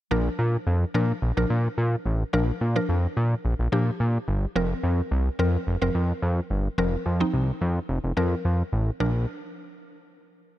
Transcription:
0.11 A#1 F3 D4 A#4
0.39 A#2
0.67 F2
0.94 A#2 F3 D4 A#4
1.22 A#1
1.37 A#1 F3 D4 A#4
1.50 A#2
1.78 A#2
2.06 A1
2.33 A#1 F3 D4 A#4
2.61 A#2
2.76 F3 D4 A#4
2.89 F2
3.17 A#2
3.45 A#1
3.59 A#1
3.72 A#2 F3 D4 G4
4.00 A#2
4.28 G1
4.56 F1 F3 C4 A#4
4.83 F2
5.11 C2
5.39 F2 F3 C4 A#4
5.67 F1
5.82 F1 F3 C4 A#4
5.95 F2
6.22 F2
6.50 G1
6.78 F1 F3 C4 A#4
7.06 F2
7.20 F3 C4 D#4
7.34 C2
7.61 F2
7.89 F1
8.04 F1
8.17 F2 F3 C4 A#4
8.45 F2
8.73 A1
9.00 A#1 F3 D4 A#4

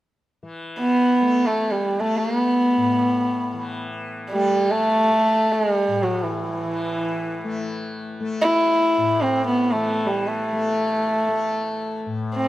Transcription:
0.43 E3
0.79 B3
1.21 A3
1.46 A3
1.71 G3
1.99 A3
2.18 A#3
2.37 B3
2.77 A2
3.54 E3
4.31 G3 A3
4.71 A3
5.11 A3
5.53 G#3
5.71 G3
5.88 A2
6.03 F#3
6.23 E3
6.65 E3
7.44 A3
8.20 A3
8.41 E4
8.98 A2
9.21 C4
9.48 B3
9.71 E3 A3
10.06 G3
10.27 A3
10.52 A3
11.28 A3
12.06 A2
12.36 C4

